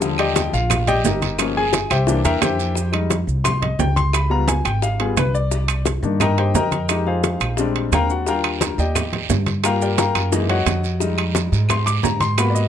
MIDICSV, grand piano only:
0, 0, Header, 1, 2, 480
1, 0, Start_track
1, 0, Tempo, 343446
1, 24, Time_signature, 4, 2, 24, 8
1, 17722, End_track
2, 0, Start_track
2, 0, Title_t, "Grand piano"
2, 0, Program_c, 0, 0
2, 4, Note_on_c, 0, 53, 55
2, 10, Note_on_c, 0, 55, 50
2, 24, Note_on_c, 0, 50, 63
2, 262, Note_on_c, 0, 79, 95
2, 268, Note_on_c, 0, 74, 77
2, 270, Note_on_c, 0, 67, 76
2, 272, Note_on_c, 0, 75, 79
2, 698, Note_off_c, 0, 53, 0
2, 701, Note_off_c, 0, 55, 0
2, 708, Note_off_c, 0, 50, 0
2, 710, Note_off_c, 0, 79, 0
2, 713, Note_off_c, 0, 74, 0
2, 714, Note_off_c, 0, 67, 0
2, 715, Note_off_c, 0, 75, 0
2, 747, Note_on_c, 0, 77, 88
2, 759, Note_on_c, 0, 65, 72
2, 1193, Note_off_c, 0, 77, 0
2, 1199, Note_off_c, 0, 65, 0
2, 1230, Note_on_c, 0, 79, 110
2, 1231, Note_on_c, 0, 67, 88
2, 1231, Note_on_c, 0, 74, 85
2, 1232, Note_on_c, 0, 75, 88
2, 1455, Note_off_c, 0, 75, 0
2, 1461, Note_off_c, 0, 67, 0
2, 1461, Note_off_c, 0, 74, 0
2, 1461, Note_off_c, 0, 79, 0
2, 1476, Note_on_c, 0, 75, 65
2, 1477, Note_on_c, 0, 70, 53
2, 1480, Note_on_c, 0, 63, 53
2, 1482, Note_on_c, 0, 67, 55
2, 1939, Note_on_c, 0, 53, 52
2, 1948, Note_on_c, 0, 58, 53
2, 1955, Note_on_c, 0, 61, 63
2, 2141, Note_off_c, 0, 70, 0
2, 2141, Note_off_c, 0, 75, 0
2, 2143, Note_off_c, 0, 63, 0
2, 2144, Note_off_c, 0, 67, 0
2, 2197, Note_on_c, 0, 80, 109
2, 2198, Note_on_c, 0, 68, 86
2, 2261, Note_off_c, 0, 53, 0
2, 2266, Note_off_c, 0, 58, 0
2, 2270, Note_off_c, 0, 61, 0
2, 2638, Note_off_c, 0, 80, 0
2, 2639, Note_off_c, 0, 68, 0
2, 2666, Note_on_c, 0, 79, 88
2, 2674, Note_on_c, 0, 67, 73
2, 2674, Note_on_c, 0, 76, 72
2, 2678, Note_on_c, 0, 72, 66
2, 2892, Note_on_c, 0, 52, 62
2, 2899, Note_on_c, 0, 58, 56
2, 2910, Note_on_c, 0, 62, 68
2, 3113, Note_off_c, 0, 79, 0
2, 3117, Note_off_c, 0, 67, 0
2, 3117, Note_off_c, 0, 76, 0
2, 3119, Note_off_c, 0, 72, 0
2, 3143, Note_on_c, 0, 70, 94
2, 3143, Note_on_c, 0, 79, 89
2, 3143, Note_on_c, 0, 82, 107
2, 3146, Note_on_c, 0, 76, 87
2, 3355, Note_off_c, 0, 79, 0
2, 3366, Note_off_c, 0, 76, 0
2, 3376, Note_on_c, 0, 79, 91
2, 3377, Note_off_c, 0, 70, 0
2, 3378, Note_off_c, 0, 82, 0
2, 3385, Note_on_c, 0, 67, 78
2, 3385, Note_on_c, 0, 72, 70
2, 3387, Note_on_c, 0, 76, 72
2, 3811, Note_off_c, 0, 52, 0
2, 3815, Note_off_c, 0, 58, 0
2, 3821, Note_off_c, 0, 62, 0
2, 3833, Note_off_c, 0, 76, 0
2, 4051, Note_off_c, 0, 79, 0
2, 4056, Note_off_c, 0, 67, 0
2, 4056, Note_off_c, 0, 72, 0
2, 4084, Note_on_c, 0, 55, 54
2, 4086, Note_on_c, 0, 56, 48
2, 4097, Note_on_c, 0, 63, 61
2, 4415, Note_off_c, 0, 55, 0
2, 4416, Note_off_c, 0, 56, 0
2, 4422, Note_off_c, 0, 63, 0
2, 4812, Note_on_c, 0, 84, 97
2, 5053, Note_off_c, 0, 84, 0
2, 5060, Note_on_c, 0, 75, 65
2, 5297, Note_off_c, 0, 75, 0
2, 5310, Note_on_c, 0, 79, 87
2, 5539, Note_on_c, 0, 84, 99
2, 5543, Note_off_c, 0, 79, 0
2, 5777, Note_off_c, 0, 84, 0
2, 5794, Note_on_c, 0, 83, 84
2, 6010, Note_on_c, 0, 55, 54
2, 6018, Note_on_c, 0, 59, 50
2, 6025, Note_off_c, 0, 83, 0
2, 6025, Note_on_c, 0, 82, 96
2, 6026, Note_on_c, 0, 65, 61
2, 6261, Note_off_c, 0, 82, 0
2, 6265, Note_on_c, 0, 80, 76
2, 6339, Note_off_c, 0, 55, 0
2, 6343, Note_off_c, 0, 59, 0
2, 6348, Note_off_c, 0, 65, 0
2, 6500, Note_off_c, 0, 80, 0
2, 6501, Note_on_c, 0, 79, 84
2, 6739, Note_off_c, 0, 79, 0
2, 6745, Note_on_c, 0, 77, 85
2, 6981, Note_off_c, 0, 77, 0
2, 6987, Note_on_c, 0, 55, 49
2, 6992, Note_on_c, 0, 59, 43
2, 6996, Note_on_c, 0, 68, 66
2, 6998, Note_on_c, 0, 65, 55
2, 7205, Note_off_c, 0, 55, 0
2, 7208, Note_off_c, 0, 59, 0
2, 7211, Note_off_c, 0, 65, 0
2, 7227, Note_off_c, 0, 68, 0
2, 7237, Note_on_c, 0, 71, 81
2, 7467, Note_off_c, 0, 71, 0
2, 7472, Note_on_c, 0, 74, 83
2, 8142, Note_off_c, 0, 74, 0
2, 8426, Note_on_c, 0, 51, 52
2, 8437, Note_on_c, 0, 58, 49
2, 8440, Note_on_c, 0, 62, 56
2, 8686, Note_on_c, 0, 70, 76
2, 8689, Note_on_c, 0, 75, 76
2, 8690, Note_on_c, 0, 79, 74
2, 8690, Note_on_c, 0, 82, 93
2, 8906, Note_off_c, 0, 79, 0
2, 8910, Note_off_c, 0, 75, 0
2, 8912, Note_off_c, 0, 70, 0
2, 8914, Note_off_c, 0, 82, 0
2, 8927, Note_on_c, 0, 79, 74
2, 8928, Note_on_c, 0, 72, 62
2, 8930, Note_on_c, 0, 67, 58
2, 8931, Note_on_c, 0, 75, 57
2, 9113, Note_off_c, 0, 51, 0
2, 9119, Note_off_c, 0, 58, 0
2, 9121, Note_off_c, 0, 62, 0
2, 9146, Note_off_c, 0, 79, 0
2, 9147, Note_off_c, 0, 75, 0
2, 9154, Note_off_c, 0, 72, 0
2, 9155, Note_off_c, 0, 67, 0
2, 9158, Note_on_c, 0, 82, 94
2, 9164, Note_on_c, 0, 70, 78
2, 9167, Note_on_c, 0, 79, 74
2, 9168, Note_on_c, 0, 75, 73
2, 9632, Note_on_c, 0, 67, 54
2, 9647, Note_on_c, 0, 56, 48
2, 9649, Note_on_c, 0, 63, 61
2, 9825, Note_off_c, 0, 82, 0
2, 9829, Note_off_c, 0, 70, 0
2, 9830, Note_off_c, 0, 79, 0
2, 9831, Note_off_c, 0, 75, 0
2, 9878, Note_on_c, 0, 77, 72
2, 9887, Note_on_c, 0, 65, 62
2, 9889, Note_on_c, 0, 68, 60
2, 9889, Note_on_c, 0, 72, 60
2, 10544, Note_off_c, 0, 67, 0
2, 10545, Note_off_c, 0, 77, 0
2, 10550, Note_off_c, 0, 65, 0
2, 10551, Note_off_c, 0, 68, 0
2, 10551, Note_off_c, 0, 72, 0
2, 10552, Note_off_c, 0, 56, 0
2, 10553, Note_off_c, 0, 63, 0
2, 10598, Note_on_c, 0, 55, 58
2, 10603, Note_on_c, 0, 56, 53
2, 10610, Note_on_c, 0, 60, 53
2, 10616, Note_on_c, 0, 62, 65
2, 11097, Note_on_c, 0, 77, 80
2, 11097, Note_on_c, 0, 79, 79
2, 11097, Note_on_c, 0, 82, 99
2, 11102, Note_on_c, 0, 70, 81
2, 11318, Note_off_c, 0, 77, 0
2, 11318, Note_off_c, 0, 79, 0
2, 11318, Note_off_c, 0, 82, 0
2, 11320, Note_off_c, 0, 70, 0
2, 11330, Note_on_c, 0, 78, 70
2, 11333, Note_on_c, 0, 66, 55
2, 11507, Note_off_c, 0, 55, 0
2, 11510, Note_off_c, 0, 56, 0
2, 11513, Note_off_c, 0, 60, 0
2, 11517, Note_off_c, 0, 62, 0
2, 11554, Note_off_c, 0, 78, 0
2, 11556, Note_off_c, 0, 66, 0
2, 11556, Note_on_c, 0, 55, 50
2, 11572, Note_on_c, 0, 62, 49
2, 11575, Note_on_c, 0, 82, 91
2, 11576, Note_on_c, 0, 65, 59
2, 11577, Note_on_c, 0, 77, 70
2, 11577, Note_on_c, 0, 79, 71
2, 11579, Note_on_c, 0, 70, 77
2, 12234, Note_off_c, 0, 82, 0
2, 12235, Note_off_c, 0, 77, 0
2, 12235, Note_off_c, 0, 79, 0
2, 12236, Note_off_c, 0, 70, 0
2, 12238, Note_off_c, 0, 55, 0
2, 12246, Note_off_c, 0, 62, 0
2, 12248, Note_off_c, 0, 65, 0
2, 12290, Note_on_c, 0, 79, 68
2, 12293, Note_on_c, 0, 75, 57
2, 12294, Note_on_c, 0, 67, 53
2, 12294, Note_on_c, 0, 74, 54
2, 12950, Note_off_c, 0, 79, 0
2, 12952, Note_off_c, 0, 75, 0
2, 12953, Note_off_c, 0, 67, 0
2, 12953, Note_off_c, 0, 74, 0
2, 13471, Note_on_c, 0, 55, 55
2, 13481, Note_on_c, 0, 58, 51
2, 13488, Note_on_c, 0, 82, 99
2, 13491, Note_on_c, 0, 70, 79
2, 13492, Note_on_c, 0, 65, 60
2, 13493, Note_on_c, 0, 79, 70
2, 13496, Note_on_c, 0, 77, 77
2, 13702, Note_off_c, 0, 79, 0
2, 13711, Note_off_c, 0, 70, 0
2, 13712, Note_off_c, 0, 82, 0
2, 13716, Note_off_c, 0, 77, 0
2, 13723, Note_on_c, 0, 79, 81
2, 13724, Note_on_c, 0, 67, 66
2, 13730, Note_on_c, 0, 74, 61
2, 13732, Note_on_c, 0, 70, 66
2, 13939, Note_off_c, 0, 79, 0
2, 13941, Note_off_c, 0, 70, 0
2, 13950, Note_off_c, 0, 67, 0
2, 13953, Note_off_c, 0, 74, 0
2, 13960, Note_on_c, 0, 79, 72
2, 13960, Note_on_c, 0, 82, 89
2, 13962, Note_on_c, 0, 70, 75
2, 13963, Note_on_c, 0, 77, 69
2, 14381, Note_off_c, 0, 55, 0
2, 14387, Note_off_c, 0, 58, 0
2, 14392, Note_off_c, 0, 65, 0
2, 14401, Note_off_c, 0, 79, 0
2, 14403, Note_off_c, 0, 77, 0
2, 14423, Note_on_c, 0, 52, 60
2, 14429, Note_on_c, 0, 56, 56
2, 14433, Note_on_c, 0, 58, 52
2, 14440, Note_on_c, 0, 63, 62
2, 14624, Note_off_c, 0, 82, 0
2, 14625, Note_off_c, 0, 70, 0
2, 14667, Note_on_c, 0, 78, 88
2, 14672, Note_on_c, 0, 73, 73
2, 14674, Note_on_c, 0, 66, 74
2, 14677, Note_on_c, 0, 75, 70
2, 14745, Note_off_c, 0, 52, 0
2, 14748, Note_off_c, 0, 56, 0
2, 14750, Note_off_c, 0, 58, 0
2, 14753, Note_off_c, 0, 63, 0
2, 15336, Note_off_c, 0, 78, 0
2, 15339, Note_off_c, 0, 73, 0
2, 15340, Note_off_c, 0, 66, 0
2, 15342, Note_off_c, 0, 75, 0
2, 15375, Note_on_c, 0, 55, 55
2, 15386, Note_on_c, 0, 56, 51
2, 15393, Note_on_c, 0, 63, 57
2, 16353, Note_on_c, 0, 84, 91
2, 16577, Note_on_c, 0, 86, 110
2, 16581, Note_off_c, 0, 84, 0
2, 16813, Note_off_c, 0, 86, 0
2, 16826, Note_on_c, 0, 82, 88
2, 17057, Note_off_c, 0, 82, 0
2, 17061, Note_on_c, 0, 84, 102
2, 17241, Note_off_c, 0, 55, 0
2, 17246, Note_off_c, 0, 56, 0
2, 17249, Note_off_c, 0, 63, 0
2, 17294, Note_off_c, 0, 84, 0
2, 17300, Note_on_c, 0, 58, 55
2, 17307, Note_on_c, 0, 59, 50
2, 17310, Note_on_c, 0, 83, 87
2, 17318, Note_on_c, 0, 66, 64
2, 17470, Note_on_c, 0, 74, 52
2, 17507, Note_off_c, 0, 74, 0
2, 17536, Note_on_c, 0, 75, 69
2, 17539, Note_off_c, 0, 83, 0
2, 17722, Note_off_c, 0, 58, 0
2, 17722, Note_off_c, 0, 59, 0
2, 17722, Note_off_c, 0, 66, 0
2, 17722, Note_off_c, 0, 75, 0
2, 17722, End_track
0, 0, End_of_file